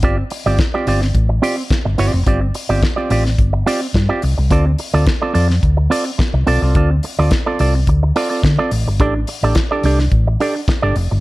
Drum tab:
HH |x-o-x-o-x-o-x-o-|x-o-x-o-x-o-x-o-|x-o-x-o-x-o-x-o-|x-o-x-o-x-o-x-o-|
SD |----o--o----o---|----o--o----o---|----o--o----o---|----o-------o---|
BD |o---o---o---o---|o---o---o---o---|o---o---o---o---|o---o---o---o---|

HH |x-o-x-o-x-o-x-o-|
SD |----o--o----o---|
BD |o---o---o---o---|